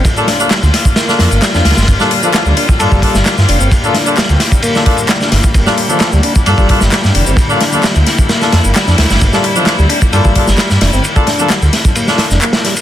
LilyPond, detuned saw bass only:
\new Staff \with { instrumentName = "Detuned saw bass" } { \clef bass \time 4/4 \key c \major \tempo 4 = 131 r4 r16 d,16 r4 f,16 g,,16 r16 f,16 d,16 g,,16 | g,,16 r4 d,16 r8 g,16 g,,16 r16 g,,16 r16 g,16 f,,16 g,,16 | r4 r16 d,16 r2 g,,16 r16 | g,,16 r4 d,16 r8 g,16 g,,16 r16 g,,16 r16 g,16 f,,16 g,,16 |
r4 r16 d,16 r4 f,16 g,,16 r16 f,16 d,16 g,,16 | g,,16 r4 d,16 r8 g,16 g,,16 r16 g,,16 r16 g,16 f,,16 g,,16 | r4 r16 d,16 r4 r16 f,,16 r4 | }